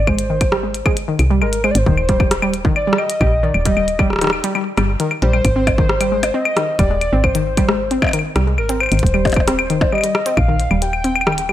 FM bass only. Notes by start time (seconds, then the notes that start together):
Already playing: G#1
1.19 C2
1.42 G#1
1.75 G#1
1.86 D#1
3.21 A#1
3.54 D#1
4.78 G1
5.22 A#1
5.45 G#1
6.79 D#1
7.13 G#1
8.36 C2
8.58 G#1
8.92 G#1
9.03 D#1
10.37 A#1
10.71 D#1